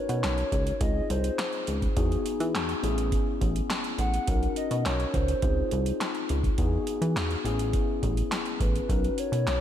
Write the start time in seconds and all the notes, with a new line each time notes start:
Already playing: C#4 D#4 F#4 A#4 C#5
0.09 B2, closed hi-hat
0.24 B1, snare, clap, closed hi-hat
0.38 closed hi-hat
0.52 C#2, kick, closed hi-hat
0.67 closed hi-hat
0.80 C#2 C4 D#4 F4 G#4 D#5, kick, closed hi-hat
1.10 C2 C5, closed hi-hat
1.24 closed hi-hat
1.39 snare, clap, closed hi-hat
1.53 closed hi-hat
1.67 C#2, closed hi-hat
1.82 kick, closed hi-hat
1.96 E2 B3 D#4 F#4 G#4, kick, closed hi-hat
2.12 closed hi-hat
2.26 closed hi-hat
2.40 E3, closed hi-hat
2.54 E2, snare, clap, closed hi-hat
2.69 closed hi-hat
2.82 A1 B3 C#4 E4 G#4, closed hi-hat
2.98 closed hi-hat
3.12 kick, closed hi-hat
3.41 A1, kick, closed hi-hat
3.56 closed hi-hat
3.70 snare, clap, closed hi-hat
3.84 closed hi-hat
3.98 A1 F#5, closed hi-hat
4.14 closed hi-hat
4.27 B1 C#4 D#4 F#4 A#4, kick, closed hi-hat
4.43 closed hi-hat
4.56 D#5, closed hi-hat
4.71 B2, closed hi-hat
4.85 B1 C#5, snare, clap, closed hi-hat
5.00 closed hi-hat
5.14 C#2 C5, kick, closed hi-hat
5.28 closed hi-hat
5.42 C#2 C4 D#4 F4 G#4, kick, closed hi-hat
5.71 C2, closed hi-hat
5.86 closed hi-hat
6.01 snare, clap, closed hi-hat
6.15 closed hi-hat
6.29 C#2, closed hi-hat
6.44 kick, closed hi-hat
6.58 E2 B3 D#4 F#4 G#4, kick, closed hi-hat
6.87 closed hi-hat
7.02 E3, closed hi-hat
7.16 E2, snare, clap, closed hi-hat
7.31 closed hi-hat
7.45 A1 B3 C#4 E4 G#4, closed hi-hat
7.59 closed hi-hat
7.73 kick, closed hi-hat
8.03 A1, kick, closed hi-hat
8.17 closed hi-hat
8.32 snare, clap, closed hi-hat
8.46 closed hi-hat
8.60 A1 B4, kick, closed hi-hat
8.76 closed hi-hat
8.88 B1 C#4 D#4 F#4 A#4, kick, closed hi-hat
9.04 closed hi-hat
9.18 C#5, closed hi-hat
9.32 B2, closed hi-hat
9.47 B1, snare, clap, closed hi-hat